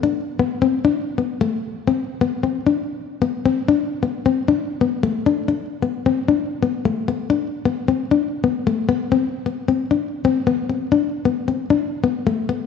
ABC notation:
X:1
M:4/4
L:1/16
Q:1/4=132
K:Ador
V:1 name="Nylon-string guitar"
D2 z B,2 C2 D2 z B,2 A,2 z2 | C2 z B,2 C2 D2 z3 B,2 C2 | D2 z B,2 C2 D2 z B,2 A,2 D2 | D2 z B,2 C2 D2 z B,2 A,2 B,2 |
D2 z B,2 C2 D2 z B,2 A,2 B,2 | C2 z B,2 C2 D2 z C2 B,2 C2 | D2 z B,2 C2 D2 z B,2 A,2 B,2 |]